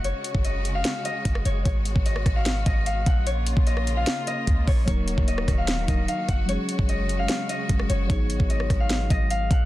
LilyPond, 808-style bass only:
\new Staff \with { instrumentName = "808-style bass" } { \clef bass \time 4/4 \key ges \major \tempo 4 = 149 ges,,16 r8 ges,,4~ ges,,16 r4 ges,,8 ges,,8 | aes,,8. aes,,8. aes,,4 aes,,4 bes,,8~ | bes,,8. bes,,4~ bes,,16 r4 des,8 bes,,8 | ees,,8. ees,,8. ees,,4 ees,,8 r8 ges,,8~ |
ges,,16 r8 ges,,4~ ges,,16 r4 ges,,8 ges,,8 | aes,,8. aes,,8. aes,,4 aes,,4 bes,,8 | }